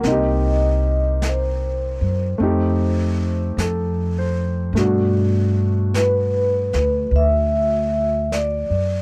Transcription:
0.00 C2 A#3 C4, brush sweep, snare
0.07 D#4 D#5
0.11 G4
1.22 brush sweep, snare, hi-hat pedal
1.29 C5
2.01 F#2
2.38 F2 A3 C4, brush sweep
2.42 D#4 G4
3.57 F2 A4, brush sweep, snare, hi-hat pedal
4.18 C5
4.73 G2 A3, brush sweep, snare
4.77 B2 D4 F#4
5.94 B4, brush sweep, snare, hi-hat pedal
6.73 D2, snare
7.11 D2, brush sweep
7.16 E5
8.32 D5, brush sweep, snare, hi-hat pedal
8.70 F#2

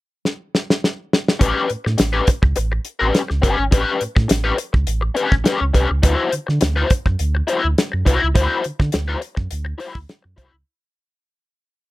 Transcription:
0.25 snare
0.55 snare
0.70 snare
0.84 snare
1.13 snare
1.28 snare
1.39 A1 C#4 G4 B4, kick, closed hi-hat
1.70 A2, closed hi-hat
1.85 A2, muted overdriven electric guitar stroke, snare
1.98 A1, muted overdriven electric guitar stroke, snare, closed hi-hat
2.13 C#4 G4 B4
2.27 muted overdriven electric guitar stroke, kick, closed hi-hat
2.42 C#2, muted overdriven electric guitar stroke, kick
2.56 A1, muted overdriven electric guitar stroke, closed hi-hat
2.72 muted overdriven electric guitar stroke
2.85 closed hi-hat
2.99 A1 C#4 G4 B4
3.15 snare, closed hi-hat
3.28 C#2, muted overdriven electric guitar stroke, snare
3.42 G1 C#4 G4 B4, kick, closed hi-hat
3.58 G#1, muted overdriven electric guitar stroke
3.71 A1 C#4 G4 B4, kick, closed hi-hat
4.01 A2, closed hi-hat
4.16 A2, muted overdriven electric guitar stroke, kick, snare
4.28 A1, muted overdriven electric guitar stroke, snare, closed hi-hat
4.44 C#4 G4 B4
4.57 muted overdriven electric guitar stroke, closed hi-hat
4.73 C#2, muted overdriven electric guitar stroke, kick
4.87 A1, closed hi-hat
5.01 muted overdriven electric guitar stroke
5.15 C#4 G4 B4, closed hi-hat
5.31 A1, muted overdriven electric guitar stroke, kick
5.44 C#4 G4 B4, snare, closed hi-hat
5.60 C#2, muted overdriven electric guitar stroke
5.74 C2 C#4 G4 B4, kick, closed hi-hat
5.89 C#2, muted overdriven electric guitar stroke
6.03 D2 D#4 F4 B4, kick, closed hi-hat
6.14 E4 F#4 C5
6.32 D3, closed hi-hat
6.47 D3, muted overdriven electric guitar stroke, snare
6.61 D2, muted overdriven electric guitar stroke, snare, closed hi-hat
6.76 E4 F#4 C5
6.90 muted overdriven electric guitar stroke, kick, closed hi-hat
7.06 F#2, muted overdriven electric guitar stroke, kick
7.19 D2, closed hi-hat
7.35 muted overdriven electric guitar stroke
7.47 E4 F#4 C5, closed hi-hat
7.63 D2, muted overdriven electric guitar stroke
7.78 snare, closed hi-hat
7.92 F#2, muted overdriven electric guitar stroke
8.05 C2 E4 F#4 C5, kick, closed hi-hat
8.21 C#2, muted overdriven electric guitar stroke
8.35 D2 E4 F#4 C5, kick, closed hi-hat
8.64 D3, closed hi-hat
8.79 D3, muted overdriven electric guitar stroke, kick, snare
8.92 D2, muted overdriven electric guitar stroke, snare, closed hi-hat
9.08 E4 F#4 C5
9.20 muted overdriven electric guitar stroke, closed hi-hat
9.35 F#2, muted overdriven electric guitar stroke, kick
9.51 D2, closed hi-hat
9.65 muted overdriven electric guitar stroke
9.78 E4 F#4 C5, open hi-hat
9.94 D2, muted overdriven electric guitar stroke, kick
10.09 snare, closed hi-hat
10.22 F#2, muted overdriven electric guitar stroke
10.36 C2 E4 F#4 C5, kick, closed hi-hat
10.52 C#2, muted overdriven electric guitar stroke

